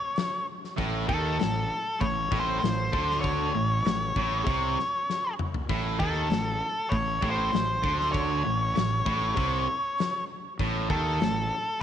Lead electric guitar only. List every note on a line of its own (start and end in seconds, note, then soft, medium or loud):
0.00 0.46 C#5 medium
1.09 2.04 A4 medium
2.01 2.40 C#5 medium
2.40 2.58 C5 medium
2.60 3.19 C5 medium
3.21 5.33 C#5 loud
5.99 6.95 A4 medium
6.89 7.30 C#5 medium
7.30 7.49 C5 medium
7.50 8.12 C5 medium
8.12 10.24 C#5 medium
10.91 11.83 A4 medium